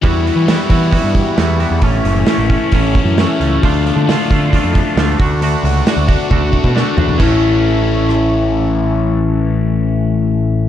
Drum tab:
CC |----------------|----------------|----------------|----------------|
HH |o-o-o-o-o-o-o-o-|o-o-o-o-o-o-o-o-|o-o-o-o-o-o-o-o-|o-o-o-o---------|
SD |----o-------o---|----o-------o---|----o-------o---|----o-------o---|
T1 |----------------|----------------|----------------|--------o-------|
FT |----------------|----------------|----------------|--------------oo|
BD |o-----o-o-o-----|o-----o-o-o-----|o-----o-o-o---o-|------o-o-oo----|

CC |x---------------|----------------|
HH |----------------|----------------|
SD |--------r-------|----------------|
T1 |----------------|----------------|
FT |----------------|----------------|
BD |o---------------|----------------|